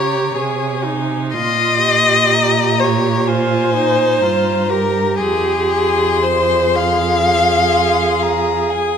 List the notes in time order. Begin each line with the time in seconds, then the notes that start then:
Already playing: C#3 G4 C#5 A#5
0.34 C3 G#4 G#5
0.84 D#4
1.33 A#2 F4 D#5 C6
1.81 G4
2.33 A#5
2.80 C#5
3.27 F4 C5 G#5
3.75 D#4
4.21 G2 F4 A#5
4.70 G4 A#4
5.18 F2 G#4 C6
6.23 G#4 C5
6.76 F5
7.26 C6
8.22 A#5
8.70 G#5